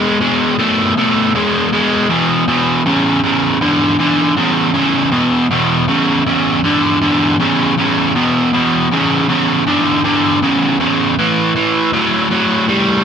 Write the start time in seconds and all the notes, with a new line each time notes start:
Already playing: B2 G#3
0.21 B2 G#3
0.59 B2 A3
0.97 B2 A3
1.35 B2 G#3
1.73 B2 G#3
2.10 E2 B2
2.48 E2 B2
2.86 E2 C#3
3.24 E2 C#3
3.61 E2 D3
3.99 E2 D3
4.37 E2 C#3
4.74 E2 C#3
5.12 E2 B2
5.51 E2 B2
5.88 E2 C#3
6.26 E2 C#3
6.64 E2 D3
7.01 E2 D3
7.40 E2 C#3
7.78 E2 C#3
8.15 E2 B2
8.53 E2 B2
8.91 E2 C#3
9.28 E2 C#3
9.67 E2 D3
10.04 E2 D3
10.42 E2 C#3
10.80 E2 C#3
11.19 A2 E3
11.56 A2 E3
11.93 A2 F#3
12.30 A2 F#3
12.68 A2 G3